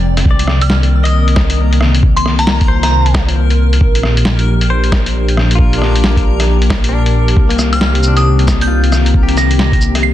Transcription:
Already playing: detuned saw bass F1, ambient pad F3 G#3 C4 G5, synth texture D5
0.17 cross-stick, closed hi-hat
0.25 detuned saw bass C2, ambient pad D#3 A#3, synth texture A#4, kick
0.31 clean electric guitar D5
0.39 closed hi-hat
0.47 cross-stick
0.61 synth bell F6, closed hi-hat
0.70 snare
0.83 closed hi-hat
1.04 clean electric guitar D#5, synth bell D#6, closed hi-hat
1.28 closed hi-hat
1.36 kick, cross-stick, snare
1.50 closed hi-hat
1.73 closed hi-hat
1.81 cross-stick
1.94 closed hi-hat
2.03 ambient pad F4, kick
2.16 synth bell C6, closed hi-hat
2.26 cross-stick
2.39 synth bell A#5, closed hi-hat
2.47 snare
2.61 kick, closed hi-hat
2.68 clean electric guitar C5
2.83 synth bell A#5, cross-stick, closed hi-hat
3.06 closed hi-hat
3.14 kick, cross-stick, snare
3.29 closed hi-hat
3.50 closed hi-hat
3.73 closed hi-hat
3.81 detuned saw bass A#1, ambient pad F3 A#3 D4 G4, kick
3.95 closed hi-hat
4.03 cross-stick
4.17 closed hi-hat
4.25 snare
4.39 closed hi-hat
4.61 closed hi-hat
4.70 clean electric guitar C5
4.84 closed hi-hat
4.92 kick, cross-stick, snare
5.06 closed hi-hat
5.28 closed hi-hat
5.37 cross-stick
5.51 closed hi-hat
5.55 clean electric guitar F4, kick
5.73 closed hi-hat
5.78 clean electric guitar D4, cross-stick
5.96 closed hi-hat
6.04 snare
6.17 kick, closed hi-hat
6.40 cross-stick, closed hi-hat
6.62 closed hi-hat
6.70 kick, cross-stick, snare
6.84 closed hi-hat
6.89 clean electric guitar D4
7.06 closed hi-hat
7.28 closed hi-hat
7.36 detuned saw bass C2, ambient pad D#3 C4, kick
7.49 clean electric guitar A#3, closed hi-hat
7.59 cross-stick, cabasa
7.73 clean electric guitar C4, synth bell F6, closed hi-hat
7.81 snare
7.95 closed hi-hat
8.03 cabasa
8.08 clean electric guitar D4
8.17 synth bell D#6, closed hi-hat
8.39 closed hi-hat
8.48 kick, cross-stick, snare, cabasa
8.61 synth bell G6, closed hi-hat
8.68 clean electric guitar F4
8.84 closed hi-hat
8.92 cross-stick, cabasa
9.06 closed hi-hat
9.14 kick
9.23 clean electric guitar G4
9.28 closed hi-hat
9.37 synth bell A#6, cross-stick, cabasa
9.51 closed hi-hat
9.59 snare
9.72 kick, closed hi-hat
9.81 cabasa
9.95 cross-stick, closed hi-hat
10.03 synth bell C7

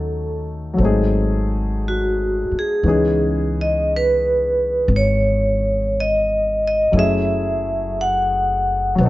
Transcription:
Already playing: upright bass D#2, grand piano F#3 A3 C#4 D#4 A4, vibraphone A4
0.74 grand piano F#3 A3
0.78 upright bass G#1, grand piano C4
0.83 grand piano D#4 G#4
1.88 vibraphone F#4
2.52 muted upright bass stroke
2.59 vibraphone G#4
2.83 upright bass C#2, grand piano E3 B3 C#4 D#4
2.88 grand piano G#4
3.61 vibraphone D#5
3.96 vibraphone B4
4.88 upright bass G#1
4.96 vibraphone C#5
6.00 vibraphone D#5
6.68 vibraphone D#5
6.92 upright bass F#1, grand piano F#3 A3 C#4
6.96 grand piano E4 G#4, vibraphone E5
8.01 vibraphone F#5
8.95 upright bass B1, grand piano F#3 B3
9.00 grand piano C4 D#4
9.06 grand piano A4

